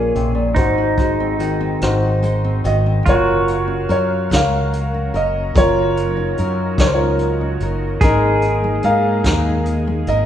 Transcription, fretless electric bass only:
0.00 0.11 A#1 medium
0.15 0.56 A#1 medium
0.56 1.77 G#1 medium
1.82 2.61 G#1 medium
2.65 3.03 G#1 medium
3.06 3.86 F#1 medium
3.89 4.28 F#2 medium
4.31 5.11 C#2 medium
5.14 5.52 F#1 medium
5.55 6.34 F#1 loud
6.39 6.75 F#2 medium
6.78 7.56 C#2 medium
7.61 7.98 F#1 medium
8.01 8.80 G#1 loud
8.84 9.21 G#2 medium
9.24 10.04 D#2 medium
10.07 10.26 G#1 medium

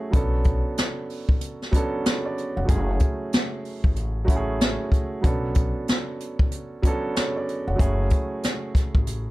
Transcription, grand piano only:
0.00 0.10 F#3 medium
0.00 0.15 A3 medium
0.00 0.13 C#4 medium
0.00 0.15 E4 medium
0.00 0.15 F#4 medium
0.00 0.15 G#4 loud
0.10 1.09 F#3 medium
0.10 1.09 B3 medium
0.10 1.10 C#4 medium
0.10 1.11 D4 medium
0.15 1.11 A4 medium
1.72 2.47 F#3 medium
1.72 2.48 B3 medium
1.72 2.48 C#4 medium
1.72 2.49 D4 medium
1.77 2.07 A4 loud
2.04 2.24 G#4 medium
2.04 2.23 C#5 medium
2.26 2.56 A4 medium
2.26 2.55 D5 medium
2.57 2.87 C#5 medium
2.57 2.87 F#5 medium
2.65 3.64 F#3 medium
2.65 3.64 A3 medium
2.65 3.65 C#4 medium
2.65 3.66 E4 medium
2.70 3.66 G#4 medium
4.24 5.01 F#3 medium
4.24 5.02 A3 medium
4.24 5.02 C#4 medium
4.24 5.03 E4 medium
4.29 4.37 F#4 medium
4.36 5.07 G#4 loud
5.21 6.20 F#3 medium
5.21 6.20 B3 medium
5.21 6.21 C#4 medium
5.21 6.21 D4 medium
5.26 6.22 A4 medium
6.82 7.58 F#3 medium
6.82 7.58 B3 medium
6.82 7.59 C#4 medium
6.82 7.59 D4 medium
6.87 7.17 A4 loud
7.15 7.34 G#4 medium
7.15 7.34 C#5 medium
7.36 7.66 A4 medium
7.36 7.66 D5 medium
7.68 7.98 C#5 medium
7.68 7.98 F#5 medium
7.76 8.74 F#3 medium
7.76 8.75 A3 medium
7.76 8.76 C#4 medium
7.76 8.76 E4 medium
7.80 8.77 G#4 medium

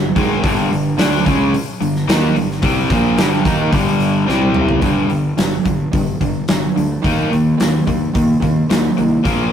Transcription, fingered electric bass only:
0.00 0.14 G1 medium
0.16 0.42 G#1 medium
0.44 0.69 G1 medium
0.71 0.97 G1 medium
0.98 1.24 D2 medium
1.27 1.52 C#2 medium
1.54 muted fingered electric bass stroke soft
1.81 2.07 G1 medium
2.08 2.34 D#2 loud
2.36 2.61 G1 medium
2.63 2.89 C2 medium
2.90 3.16 A#1 medium
3.18 3.44 G1 medium
3.46 3.72 D#2 medium
3.73 4.25 G1 medium
4.28 4.80 C2 medium
4.82 5.02 G1 medium
5.09 5.29 G1 medium
5.38 5.57 G1 medium
5.66 5.85 G1 medium
5.93 6.13 G1 medium
6.21 6.41 G1 medium
6.49 6.68 G1 medium
6.77 6.96 D2 medium
7.04 7.24 D#2 medium
7.33 7.52 D#2 medium
7.61 7.80 D#2 medium
7.88 8.07 D#2 medium
8.15 8.34 D#2 medium
8.42 8.62 D#2 medium
8.70 8.90 D#2 medium
8.99 9.18 C2 medium
9.25 9.45 A#1 medium

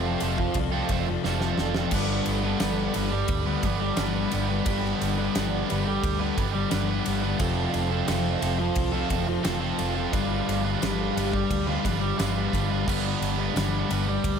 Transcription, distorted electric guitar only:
0.00 0.20 F2 loud
0.00 0.22 C3 loud
0.00 0.23 F3 loud
0.21 0.73 F2 medium
0.21 0.37 C3 medium
0.21 0.36 F3 medium
0.37 muted distorted electric guitar stroke soft
0.71 0.91 C3 medium
0.71 0.91 F3 medium
0.92 muted distorted electric guitar stroke soft
1.07 1.24 C3 medium
1.07 1.25 F3 medium
1.24 1.57 F2 medium
1.24 1.58 C3 loud
1.24 1.59 F3 loud
1.58 1.91 F2 medium
1.58 1.77 C3 medium
1.58 1.75 F3 medium
1.76 1.92 C3 medium
1.76 1.91 F3 medium
1.92 2.58 G2 medium
1.92 2.45 D3 loud
1.92 2.43 G3 loud
2.44 2.58 D3 medium
2.44 2.60 G3 medium
2.59 2.93 G2 loud
2.59 2.93 D3 loud
2.59 2.94 G3 loud
2.93 3.46 G2 medium
2.93 3.11 D3 medium
2.93 3.10 G3 medium
3.12 muted distorted electric guitar stroke medium
3.46 3.62 D3 medium
3.46 3.63 G3 medium
3.63 muted distorted electric guitar stroke soft
3.80 3.97 D3 medium
3.80 3.98 G3 medium
3.98 4.30 G2 medium
3.98 4.31 D3 medium
3.98 4.32 G3 loud
4.31 4.64 G2 medium
4.31 4.50 D3 medium
4.31 4.47 G3 medium
4.49 4.66 D3 medium
4.49 4.67 G3 medium
4.65 5.34 G2 medium
4.65 5.19 D3 loud
4.65 5.17 G3 medium
5.18 5.35 D3 medium
5.18 5.36 G3 medium
5.35 5.67 G2 medium
5.35 5.68 D3 loud
5.35 5.69 G3 loud
5.68 6.20 G2 medium
5.68 5.85 D3 medium
5.68 5.85 G3 medium
5.86 muted distorted electric guitar stroke medium
6.19 6.36 D3 medium
6.19 6.36 G3 medium
6.37 muted distorted electric guitar stroke soft
6.55 6.70 D3 medium
6.55 6.71 G3 medium
6.70 7.04 G2 loud
6.70 7.06 D3 loud
6.70 7.07 G3 loud
7.05 7.37 G2 medium
7.05 7.24 D3 medium
7.05 7.22 G3 medium
7.23 7.39 D3 medium
7.23 7.38 G3 medium
7.38 8.08 F2 loud
7.38 7.93 C3 loud
7.38 7.91 F3 loud
7.92 8.09 C3 medium
7.92 8.11 F3 medium
8.09 8.40 F2 loud
8.09 8.42 C3 loud
8.09 8.43 F3 loud
8.41 8.93 F2 medium
8.41 8.59 C3 medium
8.41 8.58 F3 medium
8.59 muted distorted electric guitar stroke medium
8.93 9.10 C3 medium
8.93 9.11 F3 medium
9.12 muted distorted electric guitar stroke medium
9.29 9.45 C3 medium
9.29 9.46 F3 medium
9.45 9.79 F2 loud
9.45 9.80 C3 loud
9.45 9.81 F3 loud
9.80 10.12 F2 medium
9.80 9.98 C3 medium
9.80 9.96 F3 medium
9.97 10.13 C3 medium
9.97 10.12 F3 medium
10.13 10.80 G2 loud
10.13 10.66 D3 loud
10.13 10.64 G3 loud
10.65 10.82 D3 medium
10.65 10.82 G3 medium
10.81 11.15 G2 loud
10.81 11.16 D3 loud
10.81 11.18 G3 loud
11.16 11.68 G2 medium
11.16 11.33 D3 medium
11.16 11.32 G3 medium
11.34 muted distorted electric guitar stroke medium
11.66 11.83 D3 medium
11.66 11.84 G3 medium
11.84 muted distorted electric guitar stroke soft
12.00 12.18 D3 medium
12.00 12.18 G3 medium
12.17 12.51 G2 medium
12.17 12.52 D3 medium
12.17 12.53 G3 loud
12.53 12.84 G2 medium
12.53 12.70 D3 medium
12.53 12.68 G3 medium
12.69 12.85 D3 medium
12.69 12.85 G3 medium
12.85 13.53 G2 medium
12.85 13.36 D3 loud
12.85 13.36 G3 loud
13.36 13.53 D3 medium
13.36 13.55 G3 medium
13.53 13.88 G2 loud
13.53 13.89 D3 loud
13.53 13.91 G3 loud
13.89 14.39 G2 medium
13.89 14.07 D3 medium
13.89 14.06 G3 medium
14.07 muted distorted electric guitar stroke medium

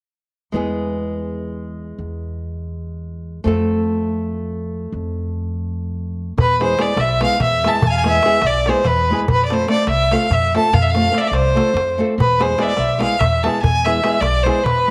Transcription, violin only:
6.41 6.60 B4 medium
6.63 6.83 C5 medium
6.81 7.02 D5 medium
7.00 7.23 E5 medium
7.23 7.40 F5 medium
7.43 7.69 E5 medium
7.67 7.88 A5 medium
7.86 7.99 F5 medium
7.86 7.91 G#5 loud
7.98 8.10 G#5 medium
8.08 8.47 E5 loud
8.46 8.70 D5 medium
8.69 8.88 C5 medium
8.86 9.20 B4 medium
9.31 9.45 B4 loud
9.45 9.54 D5 medium
9.53 9.70 C5 medium
9.70 9.87 D5 medium
9.89 10.13 E5 medium
10.12 10.34 F5 medium
10.32 10.56 E5 medium
10.57 10.75 A5 medium
10.73 10.83 F5 medium
10.82 10.91 E5 medium
10.90 11.19 F5 loud
11.17 11.22 D5 medium
11.17 11.26 E5 medium
11.25 11.28 D5 medium
11.25 11.36 D5 medium
11.35 12.01 C5 medium
12.20 12.43 B4 medium
12.42 12.61 C5 medium
12.60 12.64 D5 medium
12.60 12.69 E5 medium
12.68 12.78 D5 medium
12.76 13.00 E5 medium
13.01 13.21 F5 medium
13.19 13.45 E5 medium
13.43 13.62 A5 medium
13.62 13.86 G#5 loud
13.85 14.22 E5 medium
14.21 14.45 D5 medium
14.43 14.65 C5 medium
14.64 14.90 B4 medium

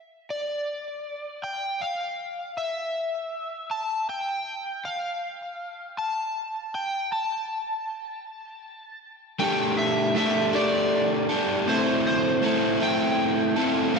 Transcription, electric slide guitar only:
0.30 1.47 D5 medium
1.44 1.82 G5 medium
1.81 2.53 F5 medium
2.58 3.74 E5 medium
3.71 4.09 A5 medium
4.09 4.87 G5 loud
4.85 5.95 F5 medium
5.99 6.74 A5 medium
6.75 7.10 G5 medium
7.12 8.98 A5 medium
9.40 9.79 G5 medium
9.78 10.16 E5 medium
10.17 10.51 E5 medium
10.55 11.71 D5 medium
11.69 12.03 C5 medium
12.07 12.78 C5 medium
12.83 13.63 G5 loud

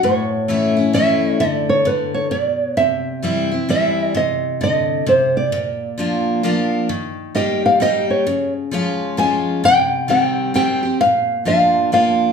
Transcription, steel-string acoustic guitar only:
0.03 0.91 A2 medium
0.48 0.76 E3 medium
0.48 0.77 A3 medium
0.48 0.77 C#4 loud
0.48 0.75 E4 medium
0.77 0.94 C#4 medium
0.77 0.93 E4 medium
0.93 1.38 E3 medium
0.93 1.39 A3 medium
0.93 1.39 C#4 loud
0.93 1.39 E4 loud
1.40 1.84 D3 medium
1.85 2.30 D3 medium
2.31 2.75 B2 medium
2.77 3.65 C3 medium
3.22 3.50 E3 medium
3.22 3.51 G3 medium
3.22 3.51 C4 medium
3.22 3.50 E4 loud
3.51 3.69 C4 medium
3.51 3.68 E4 medium
3.69 4.13 E3 medium
3.69 4.13 G3 medium
3.69 4.14 C4 medium
3.69 4.14 E4 medium
4.15 5.03 C3 medium
4.61 5.05 D3 medium
5.06 5.50 C3 medium
5.52 6.40 A#2 medium
5.98 6.42 F3 medium
5.98 6.42 A#3 medium
5.98 6.42 D4 medium
5.98 6.43 F4 medium
6.43 6.87 F3 medium
6.43 6.88 A#3 loud
6.43 6.88 D4 loud
6.43 6.88 F4 loud
6.89 7.77 D#3 loud
7.35 7.79 G3 medium
7.35 7.79 A#3 medium
7.35 7.80 D#4 medium
7.35 7.80 G4 loud
7.80 8.24 G3 medium
7.80 8.25 A#3 medium
7.80 8.25 D#4 loud
7.80 8.26 G4 loud
8.27 9.14 C#3 medium
8.71 9.16 F3 medium
8.71 9.16 G#3 medium
8.71 9.16 C#4 loud
8.71 9.17 F4 loud
9.17 9.61 F3 medium
9.17 9.62 G#3 medium
9.17 9.62 C#4 loud
9.17 9.63 F4 medium
9.64 10.52 C3 medium
10.08 10.53 D#3 medium
10.08 10.53 G3 medium
10.08 10.53 C4 medium
10.08 10.54 G4 medium
10.54 10.82 D#3 medium
10.54 10.82 G3 medium
10.54 10.83 C4 loud
10.54 10.81 G4 loud
10.83 11.01 C4 soft
10.83 10.99 G4 medium
11.01 11.89 A#2 medium
11.45 11.90 F3 medium
11.45 11.90 A#3 medium
11.45 11.90 D4 medium
11.45 11.91 F4 medium
11.92 12.32 F3 medium
11.92 12.32 A#3 medium
11.92 12.32 D4 medium
11.92 12.32 F4 loud

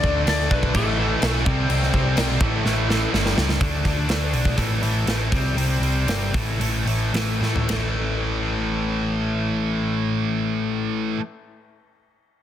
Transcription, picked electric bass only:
0.04 0.23 D2 loud
0.27 0.47 D2 loud
0.50 0.75 B1 loud
0.75 1.14 A1 loud
1.23 1.43 B1 loud
1.46 1.66 C2 medium
1.69 1.89 C2 medium
1.94 2.14 C2 medium
2.17 2.37 B1 medium
2.41 2.61 A1 loud
2.65 3.05 A1 loud
3.14 3.33 G1 loud
3.37 3.57 C#2 medium
3.61 3.84 D2 medium
3.85 4.08 D2 medium
4.10 4.32 D2 medium
4.33 4.57 B1 medium
4.58 4.81 A1 medium
4.82 5.06 A1 medium
5.06 5.31 A1 medium
5.32 5.54 C2 medium
5.55 5.79 C2 medium
5.80 6.06 C2 medium
6.06 6.32 G1 medium
6.34 6.59 A1 medium
6.59 6.85 A1 medium
6.85 7.12 A1 medium
7.13 7.40 A1 medium
7.41 7.68 A2 medium
7.71 11.12 A1 medium

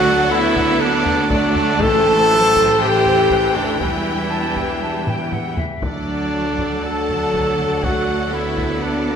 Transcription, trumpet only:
0.00 0.31 F#4 loud
0.31 0.82 E4 loud
0.81 1.31 D4 loud
1.31 1.82 D4 loud
1.81 2.80 A4 loud
2.81 3.57 G4 medium
3.56 3.80 D4 medium
3.81 5.54 E4 medium
5.83 6.85 D4 medium
6.84 7.85 A4 medium
7.83 8.35 F#4 medium
8.34 8.84 E4 medium
8.83 9.16 D4 medium

